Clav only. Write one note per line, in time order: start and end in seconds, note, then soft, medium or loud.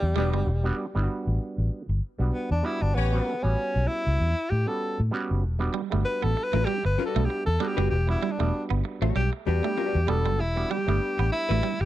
0.16 0.49 G3 loud
0.16 0.49 B3 medium
0.16 0.49 D4 medium
0.16 0.50 F#4 loud
0.64 0.85 G3 medium
0.64 0.85 B3 medium
0.64 0.86 D4 medium
0.64 0.86 F#4 loud
0.95 1.81 G3 medium
0.95 1.81 B3 medium
0.95 1.82 D4 medium
0.95 1.02 E4 medium
1.03 1.85 F#4 loud
2.19 2.52 G3 medium
2.19 2.52 B3 medium
2.19 2.52 D4 medium
2.19 2.53 F#4 medium
2.63 2.95 G3 medium
2.63 2.95 B3 medium
2.63 2.96 D4 medium
2.63 2.96 F#4 loud
3.12 3.33 G3 medium
3.12 3.33 B3 medium
3.12 3.34 C#4 medium
3.12 3.34 F#4 medium
3.43 4.29 G3 medium
3.43 4.29 B3 medium
3.43 4.30 C#4 medium
3.43 4.30 F#4 medium
4.66 5.00 G3 medium
4.66 5.00 B3 medium
4.66 5.00 C#4 medium
4.66 5.00 F#4 medium
5.11 5.43 G3 loud
5.11 5.43 B3 medium
5.11 5.44 C#4 medium
5.11 5.44 F#4 loud
5.59 5.80 G3 medium
5.59 5.81 B3 medium
5.59 5.81 D4 medium
5.59 5.82 F#4 loud
5.90 6.77 G3 medium
5.90 6.77 B3 medium
5.90 6.77 D4 medium
5.90 6.78 F#4 medium
7.15 7.48 G3 medium
7.15 7.48 B3 medium
7.15 7.48 D4 medium
7.15 7.49 F#4 medium
7.60 7.93 G3 medium
7.60 7.93 B3 medium
7.60 7.93 D4 medium
7.60 7.94 F#4 loud
8.07 8.29 G3 medium
8.07 8.29 B3 medium
8.07 8.29 D4 medium
8.07 8.30 F#4 medium
8.39 9.25 G3 medium
8.39 9.25 B3 medium
8.39 9.25 D4 medium
8.39 9.26 F#4 medium
9.62 9.95 G3 medium
9.62 9.95 B3 medium
9.62 9.96 D4 medium
9.62 9.96 G4 medium
10.07 10.40 G3 medium
10.07 10.40 B3 medium
10.07 10.41 D4 medium
10.07 10.41 F#4 medium
10.56 10.77 G3 medium
10.56 10.77 B3 medium
10.56 10.77 D4 medium
10.56 10.77 F#4 medium
10.87 11.73 G3 medium
10.87 11.73 B3 medium
10.87 11.73 D4 medium
10.87 11.74 G4 medium